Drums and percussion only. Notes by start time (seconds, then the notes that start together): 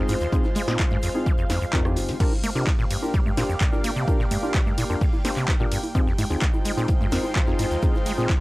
0.09 snare, closed hi-hat, open hi-hat, high conga, shaker
0.20 closed hi-hat, shaker
0.33 kick, closed hi-hat, shaker
0.44 snare, high conga, shaker
0.55 closed hi-hat, open hi-hat, low conga, shaker
0.68 snare, shaker
0.79 kick, snare, clap, closed hi-hat, high conga, shaker
0.90 snare, low conga, shaker
1.03 snare, closed hi-hat, open hi-hat, shaker
1.15 high conga, shaker
1.26 kick, closed hi-hat, shaker
1.38 closed hi-hat, shaker
1.50 snare, closed hi-hat, open hi-hat, high conga, shaker
1.62 shaker
1.73 kick, clap, closed hi-hat, shaker
1.85 cross-stick, high conga, shaker
1.96 snare, closed hi-hat, open hi-hat, shaker
2.08 snare, closed hi-hat, open hi-hat, shaker
2.20 kick, closed hi-hat, crash, shaker
2.32 snare, high conga, shaker
2.43 closed hi-hat, open hi-hat, ride, low conga, shaker
2.55 closed hi-hat, shaker
2.67 kick, snare, clap, closed hi-hat, high conga, shaker
2.79 shaker
2.90 closed hi-hat, open hi-hat, ride, shaker
3.02 closed hi-hat, high conga, shaker
3.14 kick, closed hi-hat, shaker
3.26 low conga, shaker
3.37 snare, closed hi-hat, open hi-hat, ride, high conga, shaker
3.49 shaker
3.61 kick, snare, clap, closed hi-hat, shaker
3.72 snare, high conga, shaker
3.84 snare, closed hi-hat, open hi-hat, ride, shaker
3.96 closed hi-hat, shaker
4.08 kick, closed hi-hat, high conga, shaker
4.20 snare, shaker
4.31 closed hi-hat, open hi-hat, ride, low conga, shaker
4.43 high conga, shaker
4.54 kick, snare, clap, closed hi-hat, shaker
4.66 snare, low conga, shaker
4.78 closed hi-hat, open hi-hat, ride, high conga, shaker
4.90 shaker
5.01 kick, open hi-hat, shaker
5.13 high conga, shaker
5.25 snare, closed hi-hat, open hi-hat, ride, shaker
5.37 clap, shaker
5.48 kick, snare, clap, closed hi-hat, high conga, shaker
5.60 shaker
5.72 closed hi-hat, open hi-hat, ride, shaker
5.83 open hi-hat, high conga, shaker
5.95 kick, closed hi-hat, shaker
6.07 snare, shaker
6.19 closed hi-hat, open hi-hat, ride, high conga, low conga, shaker
6.31 closed hi-hat, shaker
6.42 kick, snare, clap, closed hi-hat, shaker
6.53 high conga, shaker
6.65 closed hi-hat, open hi-hat, ride, shaker
6.78 closed hi-hat, shaker
6.88 kick, closed hi-hat, high conga, shaker
7.01 low conga, shaker
7.12 snare, closed hi-hat, open hi-hat, ride, shaker
7.24 high conga, shaker
7.36 kick, snare, clap, closed hi-hat, shaker
7.47 snare, shaker
7.59 snare, closed hi-hat, open hi-hat, ride, high conga, shaker
7.71 closed hi-hat, shaker
7.82 kick, closed hi-hat, shaker
7.95 snare, high conga, shaker
8.06 closed hi-hat, open hi-hat, ride, low conga, shaker
8.18 shaker
8.29 kick, snare, clap, closed hi-hat, high conga, shaker